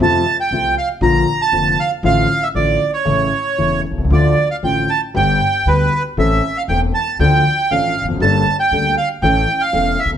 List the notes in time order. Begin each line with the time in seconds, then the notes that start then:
0.00 F2 C3 F3 A3 F4 A5
0.40 G5
0.51 C2 C3 F3 A3 F4
0.78 F5
1.01 A#1 A#2 D3 F3 A#3 F4 A#5
1.42 A5
1.52 F1 F2 D3 F3 A#3 F4
1.80 F5
2.03 A1 A2 D3 F3 A3 F4 F5
2.43 E5
2.55 A1 A2 D3 F3 A3 F4 D5
2.93 C#5
3.05 A1 A2 C#3 E3 A3 E4
3.58 E1 E2 C#3 E3 A3 E4
3.91 B1
3.98 C2
4.04 C#2
4.10 D2 D3 F3 A3 F4 D5
4.51 F5
4.63 A1 A2 D3 F3 A3 F4 G5
4.90 A5
5.14 G1 G2 D3 G3 B3 G4 G5
5.66 D2 D3 G3 B3 G4 B4
6.17 A1 A2 E3 A3 C4 A4 E5
6.57 F5
6.68 E1 E2 E3 A3 C4 A4 G5
6.94 A5
7.19 D2 D3 F3 A3 D4 A4 G5
7.71 A1 A2 F3 A3 D4 A4 F5
8.02 E1 E2
8.08 F1 F2
8.14 F#1 F#2
8.20 G1 G2 G3 A#3 D4 A4 A5
8.60 G5
8.71 D2 D3 G3 A#3 D4 A4
8.97 F5
9.22 A1 A2 E3 A3 C#4 A4 G5
9.61 F5
9.73 E1 E2 E3 A3 C#4 A4
9.99 E5
10.05 B1
10.11 C2